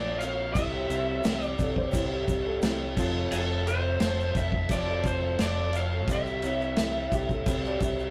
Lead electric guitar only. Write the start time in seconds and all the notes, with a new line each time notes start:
Already playing: D5
0.19 F5
0.53 E5
1.44 D5
3.32 A4
3.68 C5
4.37 E5
4.72 D5
5.07 C5
5.42 D5
5.77 F5
6.13 E5